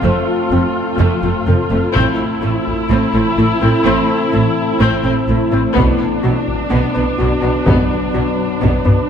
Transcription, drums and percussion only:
1.96 taiko
2.67 taiko
5.76 taiko
6.48 taiko
7.67 taiko
8.62 taiko
8.86 taiko low-mid

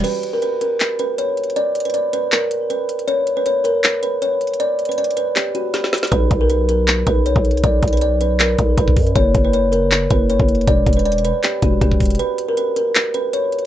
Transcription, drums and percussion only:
0.04 closed hi-hat, crash
0.23 closed hi-hat
0.42 closed hi-hat
0.61 closed hi-hat
0.80 clap, closed hi-hat
0.99 closed hi-hat
1.18 closed hi-hat
1.37 closed hi-hat
1.44 closed hi-hat
1.50 closed hi-hat
1.56 closed hi-hat
1.75 closed hi-hat
1.80 closed hi-hat
1.85 closed hi-hat
1.90 closed hi-hat
1.94 closed hi-hat
2.13 closed hi-hat
2.32 clap, closed hi-hat
2.51 closed hi-hat
2.70 closed hi-hat
2.89 closed hi-hat
2.99 closed hi-hat
3.08 closed hi-hat
3.27 closed hi-hat
3.46 closed hi-hat
3.65 closed hi-hat
3.84 clap, closed hi-hat
4.03 closed hi-hat
4.22 closed hi-hat
4.41 closed hi-hat
4.47 closed hi-hat
4.54 closed hi-hat
4.60 closed hi-hat
4.79 closed hi-hat
4.85 closed hi-hat
4.92 closed hi-hat
4.98 closed hi-hat
5.04 closed hi-hat
5.11 closed hi-hat
5.17 closed hi-hat
5.36 clap, closed hi-hat
5.55 closed hi-hat
5.74 snare, closed hi-hat
5.84 snare
5.93 snare, closed hi-hat, open hi-hat
5.98 closed hi-hat
6.03 snare, closed hi-hat
6.07 closed hi-hat
6.12 kick, closed hi-hat
6.31 kick, closed hi-hat
6.50 closed hi-hat
6.69 closed hi-hat
6.88 clap, closed hi-hat
7.07 kick, closed hi-hat
7.26 closed hi-hat
7.36 kick
7.45 closed hi-hat
7.51 closed hi-hat
7.57 closed hi-hat
7.64 kick, closed hi-hat
7.83 kick, closed hi-hat
7.88 closed hi-hat
7.93 closed hi-hat
7.97 closed hi-hat
8.01 closed hi-hat
8.21 closed hi-hat
8.40 clap, closed hi-hat
8.58 kick, closed hi-hat
8.78 kick, closed hi-hat
8.88 kick
8.97 kick, closed hi-hat, open hi-hat
9.07 closed hi-hat
9.16 kick, closed hi-hat
9.35 kick, closed hi-hat
9.53 closed hi-hat
9.73 closed hi-hat
9.92 clap, closed hi-hat
10.10 kick, closed hi-hat
10.30 closed hi-hat
10.40 kick
10.49 closed hi-hat
10.55 closed hi-hat
10.61 closed hi-hat
10.68 kick, closed hi-hat
10.87 kick, closed hi-hat
10.93 closed hi-hat
10.99 closed hi-hat
11.05 closed hi-hat
11.12 closed hi-hat
11.18 closed hi-hat
11.25 closed hi-hat
11.43 clap, closed hi-hat
11.62 kick, closed hi-hat
11.81 kick, closed hi-hat
11.92 kick
12.00 kick, closed hi-hat, open hi-hat
12.06 closed hi-hat
12.10 closed hi-hat
12.15 closed hi-hat
12.19 closed hi-hat
12.38 closed hi-hat
12.57 closed hi-hat
12.76 closed hi-hat
12.95 clap, closed hi-hat
13.14 closed hi-hat
13.33 closed hi-hat
13.52 closed hi-hat
13.59 closed hi-hat

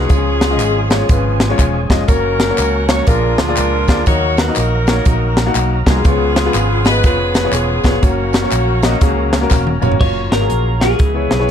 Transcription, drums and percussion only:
0.09 kick, closed hi-hat, tambourine
0.41 snare, closed hi-hat, tambourine
0.59 clap, closed hi-hat, tambourine
0.90 snare, closed hi-hat, tambourine
1.09 kick, closed hi-hat, tambourine
1.40 snare, closed hi-hat, tambourine
1.59 kick, clap, closed hi-hat, tambourine
1.90 kick, snare, closed hi-hat, tambourine
2.08 kick, closed hi-hat, tambourine
2.40 snare, closed hi-hat, tambourine
2.57 clap, closed hi-hat, tambourine
2.88 snare, closed hi-hat, tambourine
3.07 kick, closed hi-hat, tambourine
3.38 snare, closed hi-hat, tambourine
3.57 clap, closed hi-hat, tambourine
3.88 kick, snare, closed hi-hat, tambourine
4.06 kick, closed hi-hat, tambourine
4.37 snare, closed hi-hat, tambourine
4.56 clap, closed hi-hat, tambourine
4.87 snare, closed hi-hat, tambourine
5.05 kick, closed hi-hat, tambourine
5.37 snare, closed hi-hat, tambourine
5.55 clap, closed hi-hat, tambourine
5.86 kick, snare, closed hi-hat, tambourine
6.05 kick, closed hi-hat, tambourine
6.36 snare, closed hi-hat, tambourine
6.54 clap, closed hi-hat, tambourine
6.85 snare, closed hi-hat, tambourine
7.04 kick, closed hi-hat, tambourine
7.34 snare, closed hi-hat, tambourine
7.53 clap, closed hi-hat, tambourine
7.84 kick, snare, closed hi-hat, tambourine
8.03 kick, closed hi-hat, tambourine
8.33 snare, closed hi-hat, tambourine
8.52 clap, closed hi-hat, tambourine
8.82 snare, closed hi-hat, tambourine
9.01 kick, closed hi-hat, tambourine
9.33 snare, closed hi-hat, tambourine
9.51 kick, snare, clap, tambourine
9.67 high tom
9.82 mid tom, tambourine
9.92 floor tom
10.01 kick, crash
10.32 snare, closed hi-hat
10.50 closed hi-hat
10.81 snare, closed hi-hat
10.99 kick, closed hi-hat
11.31 snare, closed hi-hat

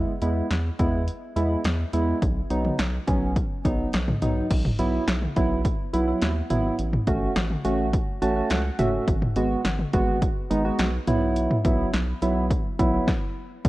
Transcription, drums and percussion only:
0.22 closed hi-hat
0.51 snare, closed hi-hat
0.79 kick, closed hi-hat
1.08 closed hi-hat
1.37 closed hi-hat
1.65 snare, closed hi-hat
1.93 closed hi-hat
2.22 kick, closed hi-hat
2.50 closed hi-hat
2.65 mid tom
2.79 snare, closed hi-hat
3.08 kick, closed hi-hat
3.36 kick, closed hi-hat
3.65 kick, closed hi-hat
3.93 snare, closed hi-hat
4.08 mid tom
4.22 closed hi-hat, mid tom
4.50 kick, closed hi-hat, crash
4.65 mid tom
4.79 closed hi-hat
5.08 snare, closed hi-hat
5.22 mid tom
5.36 kick, closed hi-hat
5.65 kick, closed hi-hat
5.94 closed hi-hat
6.22 snare, closed hi-hat
6.50 closed hi-hat, mid tom
6.79 closed hi-hat
6.93 mid tom
7.07 kick, closed hi-hat
7.36 snare, closed hi-hat
7.50 mid tom
7.65 closed hi-hat
7.93 kick, closed hi-hat
8.22 closed hi-hat
8.50 snare, closed hi-hat
8.79 closed hi-hat, mid tom
9.08 kick, closed hi-hat
9.22 mid tom
9.36 closed hi-hat
9.65 snare, closed hi-hat
9.79 mid tom
9.93 kick, closed hi-hat
10.22 kick, closed hi-hat
10.51 closed hi-hat
10.79 snare, closed hi-hat
11.07 closed hi-hat, mid tom
11.36 closed hi-hat
11.51 mid tom
11.65 kick, closed hi-hat
11.93 snare, closed hi-hat
12.22 closed hi-hat
12.50 kick, closed hi-hat
12.79 kick, closed hi-hat
13.08 kick, snare
13.65 kick, closed hi-hat

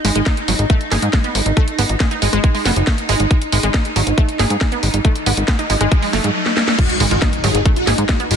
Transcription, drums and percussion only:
0.05 open hi-hat
0.16 closed hi-hat
0.26 kick, snare, closed hi-hat
0.37 closed hi-hat
0.48 open hi-hat
0.59 closed hi-hat
0.70 kick, closed hi-hat
0.81 closed hi-hat
0.92 snare, open hi-hat
1.02 closed hi-hat
1.13 kick, snare, closed hi-hat
1.24 closed hi-hat
1.35 open hi-hat
1.46 closed hi-hat
1.57 kick, closed hi-hat
1.68 closed hi-hat
1.79 open hi-hat
1.89 closed hi-hat
2.00 kick, snare, closed hi-hat
2.11 closed hi-hat
2.22 open hi-hat
2.33 closed hi-hat
2.44 kick, closed hi-hat
2.55 open hi-hat
2.65 snare, open hi-hat
2.76 closed hi-hat
2.87 kick, snare, closed hi-hat
2.98 closed hi-hat
3.09 open hi-hat
3.20 closed hi-hat
3.31 kick, closed hi-hat
3.42 closed hi-hat
3.52 open hi-hat
3.63 closed hi-hat
3.74 kick, snare, closed hi-hat
3.85 closed hi-hat
3.96 open hi-hat
4.07 closed hi-hat
4.18 kick, closed hi-hat
4.29 closed hi-hat
4.39 snare, open hi-hat
4.50 closed hi-hat
4.61 kick, snare, closed hi-hat
4.72 closed hi-hat
4.83 open hi-hat
4.94 closed hi-hat
5.05 kick, closed hi-hat
5.16 closed hi-hat
5.26 open hi-hat
5.37 closed hi-hat
5.48 kick, snare, closed hi-hat
5.59 closed hi-hat
5.70 open hi-hat
5.81 closed hi-hat
5.92 kick, closed hi-hat
6.02 open hi-hat
6.13 snare, open hi-hat
6.24 closed hi-hat
6.46 snare
6.57 snare
6.68 snare
6.79 kick, closed hi-hat, crash
6.89 closed hi-hat
7.00 open hi-hat
7.11 closed hi-hat
7.22 kick, snare, closed hi-hat
7.33 closed hi-hat
7.44 open hi-hat
7.55 closed hi-hat
7.66 kick, closed hi-hat
7.76 closed hi-hat
7.87 snare, open hi-hat
7.98 closed hi-hat
8.09 kick, snare, closed hi-hat
8.20 closed hi-hat
8.31 open hi-hat

